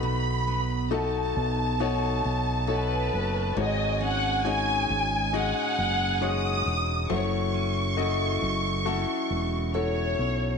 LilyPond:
<<
  \new Staff \with { instrumentName = "Violin section" } { \time 4/4 \key b \mixolydian \tempo 4 = 68 b''4 a''2. | gis''2. dis'''4 | cis'''2.~ cis'''8 r8 | }
  \new Staff \with { instrumentName = "Violin section" } { \time 4/4 \key b \mixolydian r2. b'4 | dis''8 fis''8 gis''4 fis''4. r8 | r2. cis''4 | }
  \new Staff \with { instrumentName = "Grand piano" } { \time 4/4 \key b \mixolydian <a dis' fis' b'>4 <a dis' fis' a'>4 <a dis' fis' cis''>4 <a dis' fis' cis''>4 | <gis dis' fis' cis''>4 <gis dis' fis' cis''>4 <gis dis' fis' dis''>4 <gis dis' fis' cis''>4 | <a e' fis' bis' cis''>4 <a e' fis' dis''>4 <a e' fis' a'>4 <a e' fis' cis''>4 | }
  \new Staff \with { instrumentName = "Grand piano" } { \clef bass \time 4/4 \key b \mixolydian b,4 r2. | gis,4. r2 r8 | r1 | }
  \new Staff \with { instrumentName = "Steel-string acoustic guitar" } { \time 4/4 \key b \mixolydian b,8 b8 <b dis' a'>4 <b dis' a'>4 a'4 | gis,8 cis'8 <cis' dis' gis'>4 <cis' dis' gis'>4 gis'4 | fis8 cis'8 <cis' e' a'>4 <cis' e' a'>4 a'4 | }
  \new Staff \with { instrumentName = "Fingered electric bass" } { \clef bass \time 4/4 \key b \mixolydian b,,4. b,,4 b,,4 fis,,8 | gis,,4. gis,,8. r16 fis,,4 e,,8 | fis,,4. fis,,8. r16 e,,4 b,,8 | }
>>